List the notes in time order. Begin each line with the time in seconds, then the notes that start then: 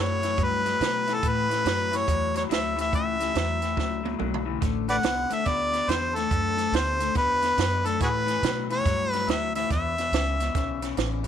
Already playing: F#2 A2 F#3
0.01 C#5
0.22 A2 E3, snare, closed hi-hat
0.37 G2 A2 F#3, kick, closed hi-hat
0.43 B4
0.65 A2 F#3, snare, closed hi-hat
0.80 A2 B2 F#3, snare, closed hi-hat
1.07 A2 E3, snare, closed hi-hat
1.14 A4
1.22 A2 E3, kick, closed hi-hat
1.28 B4
1.49 A2 E3, snare, closed hi-hat
1.64 F#2 A2 F#3, snare, closed hi-hat
1.91 A2 E3, snare, closed hi-hat
1.96 C#5
2.07 E2 A2 F#3, kick, closed hi-hat
2.34 A2 F#3 C#5, snare, closed hi-hat
2.49 D2 A2 F#3 E5, snare, closed hi-hat
2.76 A2 E3, closed hi-hat
2.80 E5, snare
2.91 C#2 A2 E3 E5, kick, closed hi-hat
3.20 A2 E3, snare, closed hi-hat
3.34 E2 A2 F#3, snare, closed hi-hat
3.62 A2 E3, snare, closed hi-hat
3.76 C#2 A2 F#3, kick, snare
4.04 A2 F#3, high tom
4.19 B1 A2 F#3, mid tom
4.34 mid tom
4.45 A2 E3
4.61 A1 D3 A3, kick, snare, closed hi-hat
4.88 D3 A3 B4 D5 F#5, snare, closed hi-hat
5.03 C2 D3 B3, snare, closed hi-hat
5.30 D3 A3 E5, muted upright bass stroke, snare, closed hi-hat
5.45 D2 D3 B3 D5, kick, snare, closed hi-hat
5.72 D3 B3, snare, closed hi-hat
5.88 E2 D3 B3 C5, snare, closed hi-hat
6.16 D3 A3 A4, snare, closed hi-hat
6.31 F#2 D3 A3, kick, closed hi-hat
6.57 D3 A3, snare, closed hi-hat
6.72 D2 D3 B3 C5, snare, closed hi-hat
6.99 D3 A3, snare, closed hi-hat
7.15 E2 D3 B3 B4, kick, snare, closed hi-hat
7.42 D3 B3, snare, closed hi-hat
7.57 F#2 D3 B3, snare, closed hi-hat
7.85 D3 A3 A4, snare, closed hi-hat
8.00 A2 E3 F#4 G#4 B4, kick, snare, closed hi-hat
8.26 A2 E3, snare, closed hi-hat
8.42 A2 B2 F#3, snare, closed hi-hat
8.70 A2 E3 C#5, snare, closed hi-hat
8.85 G2 A2 F#3, kick, snare, closed hi-hat
9.11 A2 F#3 B4, snare, closed hi-hat
9.27 D2 A2 F#3 E5, snare, closed hi-hat
9.55 A2 E3 E5, snare, closed hi-hat
9.70 E2 B2 E5, kick, snare, closed hi-hat
9.98 E2 B2, snare, closed hi-hat
10.12 C#2 E2 C#3, snare, closed hi-hat
10.40 E2 B2, snare, closed hi-hat
10.55 B1 E2 C#3, kick, snare, closed hi-hat
10.82 E2 C#3, snare, closed hi-hat
10.97 A1 E2 C#3, snare, closed hi-hat
11.23 E2 B2, closed hi-hat